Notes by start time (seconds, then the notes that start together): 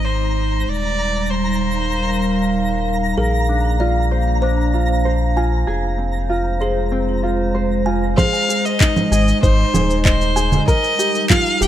Already playing: G#1 G#3 D#4 C5 A#5
0.05 C5
0.67 D#1 G3 D5
0.88 F5
1.30 C5
1.51 A#4
3.17 A#1 A#3 G#4 A#4
3.49 D4
3.62 D4
3.77 F4 C5 D5
4.11 C5
4.42 D4 C5
4.74 F4
5.05 C5
5.36 F4 G#5
5.67 F1 G#3 G#4
5.98 C4
6.05 F4
6.29 F4
6.61 G#4 C5
6.92 C4
7.23 F4
7.55 C5
7.86 F4 G#5
8.17 G#4 C5 F5, kick, low conga, shaker
8.29 D#4
8.34 shaker
8.49 G#4, shaker
8.65 D#5, shaker
8.80 D#4 D#5, kick, clap, shaker
8.96 low conga, shaker
9.11 G#1 G#4 D#5, shaker
9.28 D#5, shaker
9.43 G#1 D#4 C5, kick, shaker
9.74 D#1 G#4, low conga, shaker
9.90 shaker
10.05 C5 D#5, kick, clap, shaker
10.21 shaker
10.36 G#4 G#5, shaker
10.52 low conga, shaker
10.68 G3 A#4 D#5, kick, shaker
10.84 shaker
10.99 G4, shaker
11.05 F5
11.15 shaker
11.30 F4 F5, kick, clap, low conga, shaker
11.46 shaker
11.53 A#4
11.61 D#1 G4 G5, shaker